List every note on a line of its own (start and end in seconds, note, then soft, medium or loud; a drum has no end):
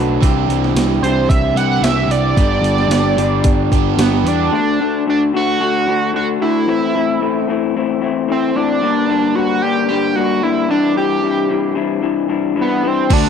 0.00 0.18 B1 medium
0.00 0.22 D3 medium
0.00 0.20 F#3 medium
0.00 0.23 F#3 medium
0.00 0.21 A3 medium
0.00 0.22 A3 medium
0.00 0.22 D4 medium
0.00 0.24 D4 medium
0.00 0.21 F#4 medium
0.00 0.22 F#4 medium
0.00 0.21 B4 medium
0.21 0.46 C2 medium
0.21 1.02 C3 medium
0.21 1.55 E3 medium
0.21 1.02 E3 loud
0.21 1.55 C4 loud
0.21 1.03 C4 loud
0.21 1.05 D4 medium
0.21 1.55 E4 medium
0.21 1.55 G4 loud
0.21 kick loud
0.21 open hi-hat medium
0.26 1.04 G4 medium
0.48 0.73 C2 medium
0.48 open hi-hat medium
0.64 snare soft
0.75 0.99 C2 loud
0.75 snare loud
0.75 open hi-hat medium
1.02 1.26 C2 medium
1.02 2.39 D4 medium
1.02 2.37 G4 medium
1.02 1.30 C5 loud
1.02 open hi-hat soft
1.06 2.38 C3 medium
1.06 2.37 E3 medium
1.06 2.38 C4 medium
1.29 1.54 C2 medium
1.29 1.58 E5 loud
1.29 kick loud
1.29 open hi-hat medium
1.55 1.79 C2 medium
1.55 1.82 E3 medium
1.55 1.83 C4 medium
1.55 1.83 E4 medium
1.55 1.82 G4 loud
1.55 1.71 F#5 loud
1.55 open hi-hat medium
1.71 1.85 F#5 loud
1.81 2.06 C2 medium
1.81 2.36 E3 medium
1.81 2.36 C4 medium
1.81 2.37 E4 medium
1.81 2.13 E5 loud
1.81 snare loud
1.81 open hi-hat medium
1.86 2.37 G4 medium
2.08 2.33 C2 medium
2.08 3.99 D5 loud
2.08 open hi-hat medium
2.36 2.61 G1 medium
2.36 3.16 G3 medium
2.36 3.70 B3 medium
2.36 3.17 B3 loud
2.36 3.71 D4 loud
2.36 3.17 D4 medium
2.36 3.71 G4 loud
2.36 3.15 G4 loud
2.36 kick loud
2.36 open hi-hat medium
2.61 2.86 G1 medium
2.61 open hi-hat medium
2.78 snare soft
2.88 3.13 G1 loud
2.88 snare loud
2.88 open hi-hat medium
3.17 3.41 G1 medium
3.17 4.51 G3 medium
3.17 4.51 B3 medium
3.17 4.51 D4 medium
3.17 4.50 G4 loud
3.17 open hi-hat medium
3.44 3.68 G1 medium
3.44 kick loud
3.44 open hi-hat medium
3.72 3.95 G1 medium
3.72 3.97 B3 medium
3.72 3.98 D4 medium
3.72 3.97 G4 medium
3.72 kick medium
3.72 open hi-hat medium
3.97 4.21 G1 medium
3.97 4.50 B3 medium
3.97 4.29 B3 medium
3.97 4.51 D4 medium
3.97 4.52 G4 medium
3.97 snare loud
3.97 open hi-hat medium
4.24 4.48 E2 medium
4.24 4.53 D4 loud
4.24 open hi-hat medium
4.51 4.79 D3 loud
4.51 4.80 A3 loud
4.51 4.80 D4 loud
4.51 5.03 D4 loud
4.51 4.80 F#4 loud
4.80 5.04 D3 medium
4.80 5.06 A3 medium
4.80 5.06 D4 loud
4.80 5.06 F#4 medium
5.06 5.32 D3 medium
5.06 5.33 A3 medium
5.06 5.33 D4 medium
5.06 5.21 D4 loud
5.06 5.33 F#4 medium
5.33 5.58 D3 loud
5.33 5.59 A3 medium
5.33 5.60 D4 medium
5.33 5.60 F#4 loud
5.33 6.11 F#4 loud
5.60 5.86 D3 loud
5.60 5.87 A3 medium
5.60 5.87 D4 loud
5.60 5.87 F#4 medium
5.87 6.12 D3 loud
5.87 6.13 A3 medium
5.87 6.13 D4 medium
5.87 6.13 F#4 medium
6.13 6.39 D3 medium
6.13 6.40 A3 medium
6.13 6.40 D4 medium
6.13 6.41 F#4 loud
6.13 6.27 F#4 loud
6.40 6.65 D3 medium
6.40 6.66 A3 medium
6.40 6.66 D4 loud
6.40 7.44 E4 loud
6.40 6.66 F#4 loud
6.67 6.93 A2 medium
6.67 6.93 E3 loud
6.67 6.94 A3 loud
6.67 6.95 C4 loud
6.67 6.94 E4 loud
6.94 7.20 A2 medium
6.94 7.20 E3 medium
6.94 7.20 A3 medium
6.94 7.21 C4 loud
6.94 7.22 E4 loud
7.21 7.46 A2 medium
7.21 7.47 E3 medium
7.21 7.48 A3 medium
7.21 7.49 C4 medium
7.21 7.49 E4 loud
7.48 7.74 A2 medium
7.48 7.74 E3 medium
7.48 7.75 A3 loud
7.48 7.75 C4 loud
7.48 7.76 E4 loud
7.75 8.00 A2 medium
7.75 8.01 E3 medium
7.75 8.00 A3 loud
7.75 8.01 C4 loud
7.75 8.02 E4 medium
8.01 8.27 A2 medium
8.01 8.27 E3 medium
8.01 8.28 A3 medium
8.01 8.28 C4 medium
8.01 8.29 E4 loud
8.28 8.54 A2 medium
8.28 8.54 E3 medium
8.28 8.55 A3 medium
8.28 8.55 C4 medium
8.28 8.58 C4 medium
8.28 8.56 E4 medium
8.55 8.80 A2 medium
8.55 8.80 E3 medium
8.55 8.80 A3 medium
8.55 8.80 C4 loud
8.55 9.37 D4 loud
8.55 8.81 E4 medium
8.81 9.07 G2 loud
8.81 9.07 D3 loud
8.81 9.08 G3 loud
8.81 9.08 A#3 loud
8.81 9.09 D4 loud
9.08 9.34 G2 medium
9.08 9.34 D3 loud
9.08 9.35 G3 loud
9.08 9.35 A#3 loud
9.08 9.37 D4 loud
9.35 9.61 G2 medium
9.35 9.62 D3 medium
9.35 9.63 G3 medium
9.35 9.63 A#3 medium
9.35 9.64 D4 medium
9.35 9.64 F#4 loud
9.62 9.88 G2 loud
9.62 9.89 D3 medium
9.62 9.89 G3 loud
9.62 9.90 A#3 loud
9.62 9.91 D4 loud
9.62 9.88 G4 loud
9.88 10.14 G2 medium
9.88 10.15 D3 medium
9.88 10.16 G3 loud
9.88 10.16 A#3 medium
9.88 10.17 D4 medium
9.88 10.17 G4 loud
10.15 10.41 G2 medium
10.15 10.42 D3 medium
10.15 10.42 G3 medium
10.15 10.43 A#3 loud
10.15 10.44 D4 loud
10.15 10.45 F#4 loud
10.42 10.67 G2 medium
10.42 10.68 D3 loud
10.42 10.68 G3 medium
10.42 10.68 A#3 loud
10.42 10.70 D4 loud
10.42 10.69 E4 medium
10.68 10.94 C3 loud
10.68 10.95 E3 loud
10.68 10.96 G3 loud
10.68 10.95 D4 medium
10.68 10.97 D4 loud
10.68 10.96 E4 medium
10.95 11.21 C3 loud
10.95 11.22 E3 loud
10.95 11.22 G3 loud
10.95 11.23 D4 loud
10.95 11.23 E4 loud
10.95 11.73 G4 loud
11.22 11.47 C3 medium
11.22 11.48 E3 medium
11.22 11.48 G3 medium
11.22 11.50 D4 medium
11.22 11.49 E4 medium
11.49 11.73 C3 medium
11.49 11.74 E3 medium
11.49 11.74 G3 medium
11.49 11.76 D4 medium
11.49 11.75 E4 medium
11.75 12.01 C3 medium
11.75 12.01 E3 loud
11.75 12.01 G3 medium
11.75 12.02 D4 loud
11.75 12.02 E4 loud
12.02 12.27 C3 medium
12.02 12.28 E3 medium
12.02 12.28 G3 medium
12.02 12.28 D4 medium
12.02 12.29 E4 medium
12.28 12.54 C3 loud
12.28 12.55 E3 medium
12.28 12.54 G3 medium
12.28 12.56 D4 loud
12.28 12.56 E4 loud
12.55 12.81 C3 medium
12.55 12.82 E3 medium
12.55 12.82 G3 medium
12.55 12.83 D4 medium
12.55 12.83 E4 loud
12.61 12.89 B3 medium
12.82 13.08 C3 medium
12.82 13.08 E3 medium
12.82 13.09 G3 medium
12.82 13.09 D4 medium
12.82 13.09 E4 medium
12.87 13.14 C4 medium
13.09 13.29 D2 medium
13.09 13.29 D3 loud
13.09 13.29 A3 loud
13.09 13.29 A3 medium
13.09 13.29 D4 loud
13.09 13.29 F#4 loud
13.09 kick loud
13.09 crash medium
13.25 snare soft